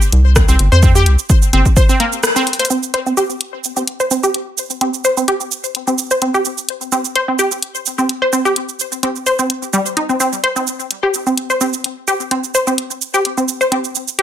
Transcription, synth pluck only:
0.48 C4
0.72 C5
0.83 C4
0.95 G4
1.53 C4
1.77 C5
1.89 C4
2.00 A#3
2.36 C4
2.59 C5
2.70 C4
2.94 C5
3.06 C4
3.17 G4
3.77 C4
4.00 C5
4.11 C4
4.23 G4
4.81 C4
5.05 C5
5.17 C4
5.28 G4
5.87 C4
6.11 C5
6.22 C4
6.34 G4
6.92 C4
7.16 C5
7.28 C4
7.39 G4
7.98 C4
8.22 C5
8.33 C4
8.45 G4
9.03 C4
9.26 C5
9.39 C4
9.73 G3
9.97 D#4
10.09 C4
10.20 C4
10.44 C5
10.56 C4
11.03 G4
11.27 C4
11.50 C5
11.61 C4
12.08 G4
12.31 C4
12.55 C5
12.67 C4
13.14 G4
13.37 C4
13.61 C5
13.72 C4
14.19 G4

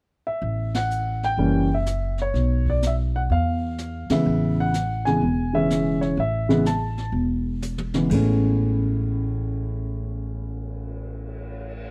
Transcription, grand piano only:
0.27 E5
0.75 F#5
1.24 G5
1.38 E3 G3 A#3 C#4
1.74 E5
2.22 C#5
2.70 D5
2.87 E5
3.16 F#5
3.32 F5
4.10 C#3 E3 G#3 B3 E5
4.60 F#5
5.05 C#3 E3 G#3 B3 G#5
5.53 C#3 E3 G#3 C#4 E5
6.01 C#5
6.20 E5
6.49 C#3 E3 G#3 B3
6.67 A5
7.95 C#3 E3 G#3 B3
8.10 A2 G#3 B3 C#4

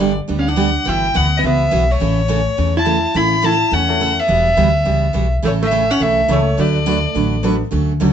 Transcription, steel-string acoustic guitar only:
0.00 D3 G3 B3 D4 G4
0.28 D3 G3 B3 D4 G4
0.56 D3 G3 B3 D4 G4
0.85 B2 E3 B3 E4 F#4
1.14 B2 E3 B3 E4 F#4
1.43 B2 E3 B3 E4 F#4
1.71 B2 E3 B3 E4 F#4
2.00 C#3 E3 A3 C#4 A4
2.28 C#3 E3 A3 C#4 A4
2.57 C#3 E3 A3 C#4 A4
2.85 C#3 E3 A3 C#4 A4
3.14 C#3 E3 A3 C#4 A4
3.42 C#3 E3 A3 C#4 A4
3.71 C#3 E3 A3 C#4 A4
4.00 C#3 E3 A3 C#4 A4
4.28 E3 G3 B3 F#4
4.57 E3 G3 B3 F#4
4.85 E3 G3 B3 F#4
5.13 E3 G3 B3 F#4
5.42 C#3 E3 A3 C#4 A4
5.71 C#3 E3 A3 C#4 A4
5.99 C#3 E3 A3 C#4 A4
6.28 C#3 E3 A3 C#4 A4
6.57 D3 F#3 A3 D4 F#4 B4
6.86 D3 F#3 A3 D4 F#4 B4
7.15 D3 F#3 A3 D4 F#4 B4
7.43 D3 F#3 A3 D4 F#4 B4
7.71 D3 F#3 A3 C#4 F#4
8.00 D3 F#3 A3 C#4 F#4

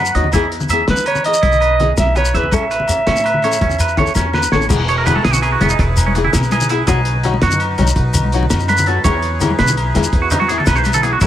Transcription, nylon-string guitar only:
0.15 F#3 B3 D#4 F#4
0.34 E3 B3 E4 G#4
0.71 E3 B3 E4 G#4
1.26 E3 E4 G#4
1.81 B3 E4 G#4, muted nylon-string guitar stroke
2.33 E3 B3 E4 G#4
2.52 E3 B3 C#4 A4
2.87 E3 B3 C#4, muted nylon-string guitar stroke
3.43 E3 B3 C#4 A4
3.97 E3 B3 C#4 A4
4.52 E3 B3 C#4 A4
4.70 E3 B3 E4 G#4
5.06 E3 B3 E4 G#4
5.61 E3 B3 E4 G#4
6.16 E3 B3 E4 G#4
6.71 B3 E4 G#4
6.87 F#3 B3 F#4, muted nylon-string guitar stroke
7.23 F#3 D#4 F#4
7.78 F#3 D#4
8.34 F#3 D#4 F#4, muted nylon-string guitar stroke
8.86 F#3 B3 D#4 F#4
9.05 E3 B3 E4 G#4
9.40 E3 B3 E4 G#4
9.94 E3 B3 E4 G#4
10.50 E3 B3 E4
11.02 E3 B3 E4
11.22 E3 B3 C#4 A4

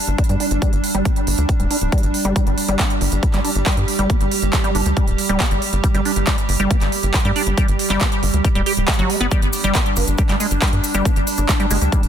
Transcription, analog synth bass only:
0.08 G1
0.29 G2
0.51 G1
0.73 G1
0.95 G1
1.27 G1
1.38 D2
1.60 D1
1.82 D1
2.03 G1
2.25 G1
2.47 G1
2.68 G1
3.01 G1
3.12 G1
3.34 G1
3.55 G1
3.77 G2
3.99 G1
4.21 G1
4.42 G1
4.75 G1
4.86 D2
5.08 D1
5.29 D1
5.51 G1
5.73 G1
5.95 G1
6.16 G1
6.49 G1
6.60 G1
6.81 G1
7.03 G1
7.25 G2
7.47 G1
7.68 G1
7.90 G1
8.23 G1
8.34 D2
8.55 D1
8.77 D1
8.99 G1
9.21 G1
9.42 G1
9.64 G1
9.97 G1
10.08 G1
10.29 G1
10.51 G1
10.73 G2
10.95 G1
11.16 G1
11.38 G1
11.71 G1
11.81 D2
12.03 D1

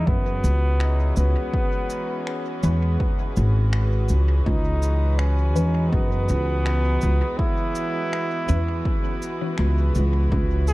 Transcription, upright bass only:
0.07 F#2
0.44 C#2
1.17 C#2
2.63 E2
3.37 G#1
4.10 C#2
4.47 C#2
5.56 E2
5.93 F#2
6.30 C#2
7.03 C#2
8.49 E2
9.59 C#2
9.96 C#2
10.32 C#2

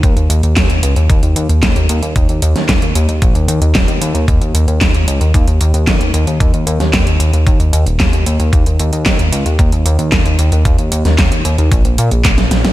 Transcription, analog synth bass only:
0.03 D#2
0.16 D#2
0.30 D#2
0.43 D#2
0.56 D#2
0.70 D#2
0.83 C#2
0.96 D#2
1.09 D#2
1.23 D#2
1.36 D#2
1.49 D#2
1.63 D#2
1.76 D#2
1.89 D#2
2.02 D#2
2.16 D#2
2.29 D#2
2.42 D#2
2.56 D#2
2.69 D#2
2.82 D#2
2.95 D#2
3.09 D#2
3.22 A#1
3.35 D#2
3.48 D#2
3.61 D#2
3.75 D#1
3.88 D#2
4.01 D#2
4.15 D#2
4.28 D#2
4.41 D#2
4.54 D#2
4.67 D#2
4.81 D#2
4.94 D#2
5.08 C#2
5.21 D#2
5.34 D#2
5.47 D#2
5.61 D#2
5.74 D#2
5.87 D#2
6.00 D#2
6.14 D#2
6.27 D#2
6.40 D#2
6.54 D#2
6.67 D#2
6.80 D#2
6.93 D#2
7.07 D#2
7.20 D#2
7.33 D#2
7.47 D#2
7.60 D#2
7.73 D#2
7.86 D#1
8.00 D#2
8.13 D#2
8.26 D#2
8.39 D#2
8.53 D#2
8.66 D#2
8.79 D#2
8.93 D#2
9.06 D#2
9.19 D#2
9.32 C#2
9.46 D#2
9.59 D#2
9.72 D#2
9.86 D#2
9.99 D#2
10.12 D#2
10.25 D#2
10.39 D#2
10.52 D#2
10.65 D#2
10.79 D#2
10.92 D#2
11.05 D#2
11.18 D#2
11.32 D#2
11.45 D#2
11.58 D#2
11.72 A#1
11.85 A#1
11.98 A#2
12.12 A#1
12.25 A#1
12.38 A#1
12.51 A#1
12.65 G#1

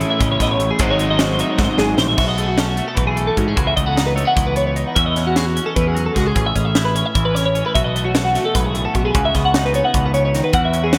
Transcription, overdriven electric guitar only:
Already playing: A2 E3 A3 C#4 E4
0.79 G#2 D#3 F#3 C4 D#4

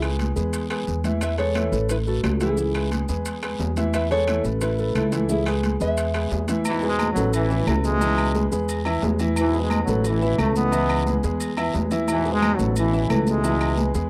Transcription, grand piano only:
0.03 G#3 G#4 B4
0.36 G#3 G#4 B4
0.70 G#3 G#4 B4
1.05 E3 E4 E5
1.38 G#3 G#4 B4
1.56 E3 E4 E5
1.72 A3 A4 B4
2.06 A3 A4 B4
2.41 E3 E4 E5
2.58 E3 E4 E5
2.74 G#3 G#4 B4
3.09 G#3 G#4 B4
3.43 G#3 G#4 B4
3.77 E3 E4 E5
4.10 G#3 G#4 B4
4.28 E3 E4 E5
4.45 A3 A4 B4
4.79 A3 A4 B4
5.12 E3 E4 E5
5.29 E3 E4 E5
5.46 G#3 G#4 B4
5.80 G#3 G#4 B4
6.15 G#3 G#4 B4
6.49 E3 E4 E5
6.83 G#3 G#4 B4
7.17 A3 A4 B4
7.51 E3 E4 E5
7.68 A3 A4 B4
8.01 E3 E4 E5
8.35 G#3 G#4 B4
8.52 G#3 G#4 B4
8.85 E3 E4 E5
9.03 G#3 G#4 B4
9.20 E3 E4 E5
9.54 G#3 G#4 B4
9.88 A3 A4 B4
10.22 E3 E4 E5
10.39 A3 A4 B4
10.72 E3 E4 E5
11.06 G#3 G#4 B4
11.24 G#3 G#4 B4
11.57 E3 E4 E5
11.74 G#3 G#4 B4
11.91 E3 E4 E5
12.25 G#3 G#4 B4
12.59 A3 A4 B4
12.93 E3 E4 E5
13.10 A3 A4 B4
13.44 E3 E4 E5
13.78 G#3 G#4 B4
13.95 G#3 G#4 B4

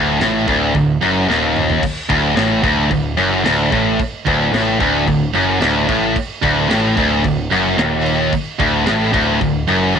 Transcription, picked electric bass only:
Already playing: D1
0.21 A1
0.48 D1
0.75 D1
1.03 F#1
1.29 D#1
2.10 D1
2.37 A1
2.64 D1
2.91 D1
3.18 F#1
3.46 D1
3.72 A1
4.27 D1
4.52 A1
4.81 D1
5.08 D1
5.34 F#1
5.62 D1
5.89 A1
6.43 D1
6.71 A1
6.97 D1
7.24 D1
7.51 F#1
7.78 D#1
8.60 D1
8.88 A1
9.14 D1
9.41 D1
9.69 F#1

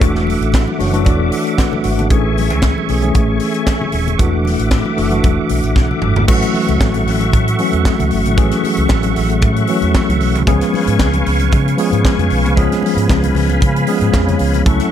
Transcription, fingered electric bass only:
0.01 E1
0.41 A1
0.80 F#1
1.06 E1
1.85 G#1
2.10 A1
2.50 C#2
2.89 B1
3.15 A1
3.94 D#1
4.20 E1
4.59 A1
4.98 F#1
5.24 E1
5.50 B1
5.64 A1
5.76 B1
6.02 G1
6.17 G#1
6.28 A1
6.69 C#2
6.81 A1
7.06 A1
7.33 A2
7.73 E2
8.00 C#2
8.13 G1
8.26 G#1
8.37 A1
8.78 C#2
8.90 A1
9.17 A1
9.43 A2
9.83 E2
10.09 C#2
10.22 B1
10.35 C2
10.47 C#2
10.88 G#2
10.99 C#2
11.27 C#2
11.52 C#3
11.92 G#2
12.18 F2
12.31 B1
12.44 C2
12.57 C#2
12.96 G#2
13.10 C#2
13.35 C#2
13.62 C#3
14.01 G#2
14.14 F2
14.40 C#2
14.67 C#2

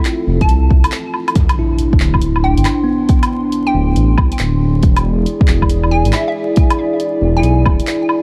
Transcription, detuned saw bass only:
0.27 F1
0.49 C2
0.70 C2
2.00 D1
2.21 D1
2.57 G1
3.74 D1
3.96 A1
4.18 C2
4.40 D1
4.83 E1
5.48 E1
5.70 E1
6.06 G#1
7.22 E1
7.43 B1
7.66 D1

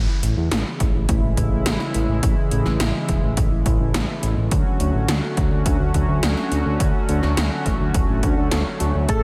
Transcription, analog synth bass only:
0.23 A1
0.37 E2
0.51 A1
0.80 A1
0.95 A1
1.09 A1
1.23 A1
1.37 A1
1.52 A1
1.66 A1
1.95 A1
2.09 A1
2.23 A1
2.52 A1
2.66 A1
2.80 A1
3.09 E1
3.23 A1
3.37 A1
3.52 A1
3.66 A1
3.80 A1
3.94 A1
4.23 A1
4.37 A1
4.52 D2
4.80 D2
4.94 A1
5.08 D2
5.37 D2
5.51 D2
5.66 D2
5.80 D2
5.94 D2
6.09 D2
6.23 D2
6.52 D2
6.66 D2
6.80 D2
7.09 D2
7.23 D2
7.38 D2
7.66 A1
7.81 D2
7.95 D1
8.09 A1
8.23 D2
8.38 D2
8.52 D2
8.81 D2
8.95 D2
9.09 A1

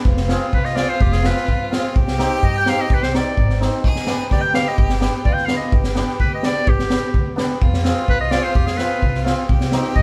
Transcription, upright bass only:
0.05 F1
0.53 C2
1.01 F1
1.49 G2
1.96 C2
2.43 G2
2.90 C2
3.38 G#1
3.84 G1
4.31 D2
4.78 G1
5.25 D2
5.72 G1
6.20 D2
6.67 G1
7.14 D2
7.62 F2
8.08 C2
8.55 F2
9.03 C2
9.49 C2
9.96 G2

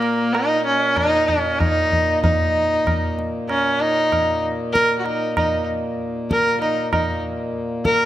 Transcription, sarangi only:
Already playing: A#3
0.35 D#4
0.66 C#4
0.97 D#4
1.28 C#4
1.59 D#4
2.23 D#4
3.49 C#4
3.81 D#4
4.73 A#4
4.99 F#4
5.05 D#4
5.37 D#4
6.31 A#4
6.61 D#4
6.92 D#4
7.85 A#4

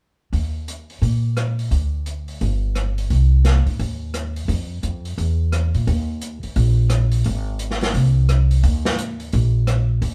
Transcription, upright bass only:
0.33 D#2
1.02 A#2
1.71 D2
2.41 G1
3.10 C2
3.67 muted upright bass stroke
3.79 D#2
4.48 F2
4.83 F2
5.18 E2
5.74 A#2
5.87 D#2
6.43 muted upright bass stroke
6.56 A#1
7.26 G#1
7.95 C2
8.63 D#2
9.33 A#1
10.02 D#2

